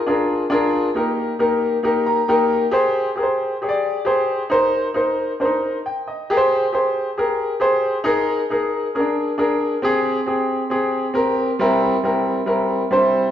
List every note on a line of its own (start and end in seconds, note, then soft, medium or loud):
0.07 0.42 D4 medium
0.07 0.42 F4 medium
0.07 0.43 G#4 medium
0.07 0.43 A#4 medium
0.50 0.86 D4 loud
0.50 0.86 F4 medium
0.50 0.87 G#4 medium
0.50 0.87 A#4 loud
0.95 1.31 A#3 medium
0.95 1.31 D#4 medium
0.95 1.31 G4 medium
0.95 1.32 A#4 medium
1.39 1.75 A#3 medium
1.39 1.75 D#4 medium
1.39 1.75 G4 medium
1.39 1.75 A#4 medium
1.83 2.19 A#3 medium
1.83 2.19 D#4 medium
1.83 2.20 G4 medium
1.83 2.20 A#4 loud
2.06 2.27 A#5 medium
2.28 2.64 A#3 loud
2.28 2.64 D#4 medium
2.28 2.64 G4 medium
2.28 2.65 A#4 loud
2.28 2.70 G5 medium
2.71 3.08 G4 loud
2.71 3.08 G#4 medium
2.71 3.09 C5 loud
3.16 3.52 G4 medium
3.16 3.53 G#4 medium
3.16 3.23 A#4 medium
3.23 3.56 C5 medium
3.62 3.97 G4 medium
3.62 3.98 G#4 medium
3.62 3.68 C#5 medium
3.69 4.01 D5 medium
4.05 4.41 G4 medium
4.05 4.42 G#4 medium
4.05 4.42 C5 medium
4.50 4.86 D#4 medium
4.50 4.86 A#4 medium
4.50 4.86 C5 loud
4.94 5.30 D#4 medium
4.94 5.31 A#4 medium
4.94 5.31 C5 medium
5.40 5.45 D4 medium
5.40 5.75 A#4 medium
5.40 5.76 C5 medium
5.45 5.78 D#4 medium
5.86 6.06 G5 medium
6.08 6.49 D#5 medium
6.30 6.64 G4 loud
6.30 6.65 G#4 medium
6.30 6.35 A#4 medium
6.37 6.68 C5 loud
6.73 7.08 G4 medium
6.73 7.08 G#4 medium
6.73 7.09 C5 medium
7.18 7.52 G4 medium
7.18 7.52 G#4 medium
7.18 7.53 A#4 medium
7.60 7.96 G4 medium
7.60 7.96 G#4 medium
7.60 7.96 C5 loud
8.04 8.40 D#4 loud
8.04 8.40 G#4 loud
8.04 8.41 A#4 loud
8.50 8.85 D#4 medium
8.50 8.85 G#4 medium
8.50 8.86 A#4 medium
8.95 9.00 C#4 medium
8.95 9.30 G#4 medium
8.95 9.30 A#4 medium
8.99 9.32 D4 medium
9.38 9.73 D4 medium
9.38 9.73 G#4 medium
9.38 9.74 A#4 medium
9.82 10.17 C4 medium
9.82 10.18 G4 loud
9.82 10.18 G#4 loud
10.27 10.61 C4 medium
10.27 10.62 G4 medium
10.27 10.62 G#4 medium
10.70 11.05 C4 medium
10.70 11.06 G4 medium
10.70 11.06 G#4 medium
11.14 11.49 C4 medium
11.14 11.50 G4 medium
11.14 11.50 A#4 loud
11.59 11.94 G3 loud
11.59 11.94 C4 loud
11.59 11.95 E4 loud
11.59 11.95 A#4 loud
12.04 12.38 G3 medium
12.04 12.38 C4 medium
12.04 12.38 E4 medium
12.04 12.39 A#4 medium
12.46 12.81 G3 medium
12.46 12.81 C4 medium
12.46 12.82 E4 medium
12.46 12.82 A#4 medium
12.91 13.26 G3 medium
12.91 13.26 C4 medium
12.91 12.97 D4 medium
12.91 13.27 C5 loud
12.97 13.29 E4 medium